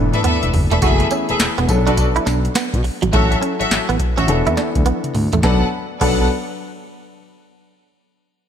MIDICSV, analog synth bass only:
0, 0, Header, 1, 2, 480
1, 0, Start_track
1, 0, Tempo, 576923
1, 682, Time_signature, 4, 2, 24, 8
1, 7061, End_track
2, 0, Start_track
2, 0, Title_t, "Analog synth bass"
2, 0, Program_c, 0, 38
2, 0, Note_on_c, 0, 28, 105
2, 91, Note_off_c, 0, 28, 0
2, 359, Note_on_c, 0, 28, 87
2, 425, Note_off_c, 0, 28, 0
2, 449, Note_on_c, 0, 30, 97
2, 562, Note_off_c, 0, 30, 0
2, 597, Note_on_c, 0, 28, 97
2, 663, Note_off_c, 0, 28, 0
2, 684, Note_on_c, 0, 30, 102
2, 866, Note_off_c, 0, 30, 0
2, 1078, Note_on_c, 0, 28, 50
2, 1112, Note_off_c, 0, 28, 0
2, 1166, Note_on_c, 0, 28, 51
2, 1225, Note_off_c, 0, 28, 0
2, 1315, Note_on_c, 0, 28, 98
2, 1382, Note_off_c, 0, 28, 0
2, 1406, Note_on_c, 0, 35, 108
2, 1771, Note_off_c, 0, 35, 0
2, 1884, Note_on_c, 0, 35, 95
2, 2066, Note_off_c, 0, 35, 0
2, 2276, Note_on_c, 0, 47, 97
2, 2343, Note_off_c, 0, 47, 0
2, 2518, Note_on_c, 0, 32, 94
2, 2584, Note_off_c, 0, 32, 0
2, 2607, Note_on_c, 0, 33, 103
2, 2788, Note_off_c, 0, 33, 0
2, 3000, Note_on_c, 0, 33, 52
2, 3033, Note_off_c, 0, 33, 0
2, 3086, Note_on_c, 0, 33, 49
2, 3145, Note_off_c, 0, 33, 0
2, 3237, Note_on_c, 0, 33, 89
2, 3304, Note_off_c, 0, 33, 0
2, 3477, Note_on_c, 0, 33, 81
2, 3543, Note_off_c, 0, 33, 0
2, 3564, Note_on_c, 0, 28, 111
2, 3679, Note_off_c, 0, 28, 0
2, 3716, Note_on_c, 0, 40, 98
2, 3783, Note_off_c, 0, 40, 0
2, 3957, Note_on_c, 0, 38, 101
2, 4024, Note_off_c, 0, 38, 0
2, 4284, Note_on_c, 0, 38, 92
2, 4398, Note_off_c, 0, 38, 0
2, 4432, Note_on_c, 0, 33, 89
2, 4500, Note_off_c, 0, 33, 0
2, 4522, Note_on_c, 0, 35, 99
2, 4679, Note_off_c, 0, 35, 0
2, 5003, Note_on_c, 0, 35, 104
2, 5226, Note_off_c, 0, 35, 0
2, 7061, End_track
0, 0, End_of_file